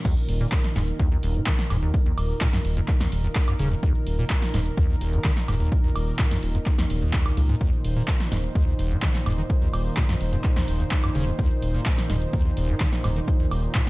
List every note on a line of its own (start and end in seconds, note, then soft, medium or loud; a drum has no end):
0.05 0.15 D#2 loud
0.05 13.90 A#2 medium
0.05 13.90 D#3 medium
0.05 13.90 D#4 medium
0.05 7.59 A#4 medium
0.05 kick loud
0.05 closed hi-hat medium
0.05 crash loud
0.05 shaker medium
0.17 closed hi-hat soft
0.17 shaker soft
0.29 0.45 D#1 loud
0.29 open hi-hat loud
0.41 0.47 A#2 medium
0.41 shaker medium
0.52 kick loud
0.52 clap loud
0.52 closed hi-hat medium
0.52 shaker medium
0.64 snare medium
0.64 closed hi-hat medium
0.64 shaker soft
0.76 0.92 D#1 loud
0.76 0.83 G#2 medium
0.76 snare medium
0.76 open hi-hat loud
0.88 closed hi-hat medium
0.88 shaker medium
0.99 1.09 D#2 loud
0.99 kick loud
0.99 closed hi-hat medium
0.99 shaker medium
1.12 1.18 D#2 medium
1.12 shaker soft
1.23 1.39 D#1 loud
1.23 1.37 D#1 medium
1.23 open hi-hat loud
1.35 1.42 A#2 medium
1.35 closed hi-hat soft
1.35 shaker medium
1.46 1.53 D#3 medium
1.46 kick loud
1.46 clap loud
1.46 closed hi-hat medium
1.46 shaker medium
1.59 snare medium
1.59 closed hi-hat soft
1.59 shaker soft
1.70 1.86 D#1 loud
1.70 1.77 G#2 medium
1.70 snare soft
1.70 open hi-hat loud
1.70 high woodblock medium
1.82 1.92 D#2 medium
1.82 closed hi-hat soft
1.82 shaker medium
1.94 kick loud
1.94 closed hi-hat medium
1.94 shaker medium
2.06 2.12 D#2 medium
2.06 closed hi-hat soft
2.06 shaker soft
2.18 2.34 D#1 loud
2.18 open hi-hat loud
2.18 high woodblock medium
2.30 shaker medium
2.41 2.48 A#2 medium
2.41 kick loud
2.41 clap loud
2.41 closed hi-hat medium
2.41 shaker medium
2.53 2.60 F#2 medium
2.53 snare medium
2.53 closed hi-hat medium
2.53 shaker soft
2.65 2.81 D#1 loud
2.65 open hi-hat loud
2.77 2.81 F2 medium
2.77 closed hi-hat medium
2.77 shaker medium
2.88 kick loud
2.88 clap medium
2.88 closed hi-hat medium
2.88 shaker medium
3.01 3.07 D#2 medium
3.01 snare medium
3.01 closed hi-hat soft
3.01 shaker soft
3.12 3.28 D#1 medium
3.12 open hi-hat loud
3.24 3.28 D#2 medium
3.24 closed hi-hat soft
3.24 shaker medium
3.35 kick loud
3.35 clap loud
3.35 closed hi-hat medium
3.35 shaker medium
3.48 3.54 F#2 medium
3.48 closed hi-hat soft
3.48 high woodblock medium
3.48 shaker soft
3.59 3.75 D#1 medium
3.59 3.69 C#3 loud
3.59 open hi-hat loud
3.71 3.75 F2 medium
3.71 closed hi-hat soft
3.71 shaker medium
3.83 3.93 D#2 medium
3.83 kick loud
3.83 closed hi-hat medium
3.83 shaker medium
3.95 closed hi-hat soft
3.95 shaker soft
4.07 4.23 D#1 loud
4.07 open hi-hat loud
4.19 4.25 A#2 medium
4.19 shaker medium
4.30 kick loud
4.30 clap loud
4.30 closed hi-hat medium
4.30 shaker medium
4.42 snare medium
4.42 closed hi-hat medium
4.42 shaker soft
4.54 4.70 D#1 loud
4.54 4.60 G#2 medium
4.54 snare medium
4.54 open hi-hat loud
4.66 closed hi-hat medium
4.66 shaker medium
4.77 4.87 D#2 loud
4.77 kick loud
4.77 closed hi-hat medium
4.77 shaker medium
4.90 4.96 D#2 medium
4.90 shaker soft
5.01 5.17 D#1 loud
5.01 5.15 D#1 medium
5.01 open hi-hat loud
5.13 5.19 A#2 medium
5.13 closed hi-hat soft
5.13 shaker medium
5.24 5.31 D#3 medium
5.24 kick loud
5.24 clap loud
5.24 closed hi-hat medium
5.24 shaker medium
5.37 snare medium
5.37 closed hi-hat soft
5.37 shaker soft
5.48 5.64 D#1 medium
5.48 5.55 G#2 medium
5.48 snare soft
5.48 open hi-hat loud
5.48 high woodblock medium
5.60 5.70 D#2 medium
5.60 closed hi-hat soft
5.60 shaker medium
5.72 kick loud
5.72 closed hi-hat medium
5.72 shaker medium
5.84 5.90 D#2 medium
5.84 closed hi-hat soft
5.84 shaker soft
5.95 6.12 D#1 loud
5.95 open hi-hat loud
5.95 high woodblock medium
6.08 shaker medium
6.19 6.26 A#2 medium
6.19 kick loud
6.19 clap loud
6.19 closed hi-hat medium
6.19 shaker medium
6.31 6.38 F#2 medium
6.31 snare medium
6.31 closed hi-hat soft
6.31 shaker soft
6.43 6.59 D#1 loud
6.43 open hi-hat loud
6.55 6.59 F2 medium
6.55 closed hi-hat medium
6.55 shaker medium
6.66 kick loud
6.66 clap medium
6.66 closed hi-hat medium
6.66 shaker medium
6.79 6.85 D#2 medium
6.79 snare medium
6.79 closed hi-hat soft
6.79 shaker soft
6.90 7.06 D#1 loud
6.90 open hi-hat loud
7.02 7.12 D#2 medium
7.02 closed hi-hat soft
7.02 shaker medium
7.13 7.24 D#2 medium
7.13 kick loud
7.13 clap loud
7.13 closed hi-hat medium
7.13 shaker medium
7.26 7.32 C#2 medium
7.26 closed hi-hat soft
7.26 high woodblock medium
7.26 shaker soft
7.37 7.53 C#2 loud
7.37 7.41 C#2 medium
7.37 open hi-hat loud
7.49 7.56 G#2 loud
7.49 closed hi-hat soft
7.49 shaker medium
7.61 7.71 D#2 loud
7.61 13.90 C5 loud
7.61 kick loud
7.61 closed hi-hat medium
7.61 shaker medium
7.73 closed hi-hat soft
7.73 shaker soft
7.84 8.01 D#1 loud
7.84 open hi-hat loud
7.97 8.03 A#2 medium
7.97 shaker medium
8.08 kick loud
8.08 clap loud
8.08 closed hi-hat medium
8.08 shaker medium
8.20 snare medium
8.20 closed hi-hat medium
8.20 shaker soft
8.32 8.48 D#1 loud
8.32 8.38 G#2 medium
8.32 snare medium
8.32 open hi-hat loud
8.44 closed hi-hat soft
8.44 shaker medium
8.55 8.65 D#2 loud
8.55 kick loud
8.55 closed hi-hat medium
8.55 shaker medium
8.67 8.74 D#2 medium
8.67 shaker soft
8.79 8.95 D#1 medium
8.79 8.93 D#1 medium
8.79 open hi-hat loud
8.91 8.97 A#2 medium
8.91 closed hi-hat soft
8.91 shaker medium
9.02 9.09 D#3 medium
9.02 kick loud
9.02 clap loud
9.02 closed hi-hat medium
9.02 shaker medium
9.15 snare medium
9.15 closed hi-hat soft
9.15 shaker soft
9.26 9.42 D#1 medium
9.26 9.33 G#2 medium
9.26 snare soft
9.26 open hi-hat loud
9.26 high woodblock medium
9.38 9.42 D#3 medium
9.38 closed hi-hat soft
9.38 shaker medium
9.50 kick loud
9.50 closed hi-hat medium
9.50 shaker medium
9.62 9.68 D#2 medium
9.62 closed hi-hat soft
9.62 shaker soft
9.73 9.90 D#1 loud
9.73 open hi-hat loud
9.73 high woodblock medium
9.86 shaker medium
9.97 10.04 A#2 medium
9.97 kick loud
9.97 clap loud
9.97 closed hi-hat medium
9.97 shaker medium
10.09 10.16 F#2 medium
10.09 snare medium
10.09 closed hi-hat medium
10.09 shaker soft
10.21 10.37 D#1 medium
10.21 open hi-hat loud
10.33 10.37 F2 medium
10.33 closed hi-hat medium
10.33 shaker medium
10.44 kick loud
10.44 clap medium
10.44 closed hi-hat medium
10.44 shaker medium
10.56 10.63 D#2 medium
10.56 snare medium
10.56 closed hi-hat soft
10.56 shaker soft
10.68 10.84 D#1 medium
10.68 open hi-hat loud
10.80 10.84 D#2 medium
10.80 closed hi-hat soft
10.80 shaker medium
10.91 kick loud
10.91 clap loud
10.91 closed hi-hat medium
10.91 shaker medium
11.04 11.10 F#2 medium
11.04 closed hi-hat soft
11.04 high woodblock medium
11.04 shaker soft
11.15 11.31 D#1 medium
11.15 11.25 C#3 loud
11.15 open hi-hat loud
11.27 11.31 F2 medium
11.27 closed hi-hat soft
11.27 shaker medium
11.39 11.49 D#2 loud
11.39 kick loud
11.39 closed hi-hat medium
11.39 shaker medium
11.51 closed hi-hat soft
11.51 shaker soft
11.62 11.79 D#1 loud
11.62 open hi-hat loud
11.75 11.81 A#2 medium
11.75 shaker medium
11.86 kick loud
11.86 clap loud
11.86 closed hi-hat medium
11.86 shaker medium
11.98 snare medium
11.98 closed hi-hat medium
11.98 shaker soft
12.10 12.26 D#1 medium
12.10 12.16 G#2 medium
12.10 snare medium
12.10 open hi-hat loud
12.22 closed hi-hat medium
12.22 shaker medium
12.33 12.43 D#2 loud
12.33 kick loud
12.33 closed hi-hat medium
12.33 shaker medium
12.45 12.52 D#2 medium
12.45 shaker soft
12.57 12.70 D#1 medium
12.57 12.73 D#1 medium
12.57 open hi-hat loud
12.69 12.75 A#2 medium
12.69 closed hi-hat soft
12.69 shaker medium
12.80 12.87 D#3 medium
12.80 kick loud
12.80 clap loud
12.80 closed hi-hat medium
12.80 shaker medium
12.93 snare medium
12.93 closed hi-hat soft
12.93 shaker soft
13.04 13.20 D#1 medium
13.04 13.11 G#2 medium
13.04 snare soft
13.04 open hi-hat loud
13.04 high woodblock medium
13.16 13.20 D#3 medium
13.16 closed hi-hat soft
13.16 shaker medium
13.28 kick loud
13.28 closed hi-hat medium
13.28 shaker medium
13.40 13.46 D#2 medium
13.40 closed hi-hat soft
13.40 shaker soft
13.51 13.68 D#1 loud
13.51 open hi-hat loud
13.51 high woodblock medium
13.64 closed hi-hat soft
13.64 shaker medium
13.75 13.82 A#2 medium
13.75 kick loud
13.75 clap loud
13.75 closed hi-hat medium
13.75 shaker medium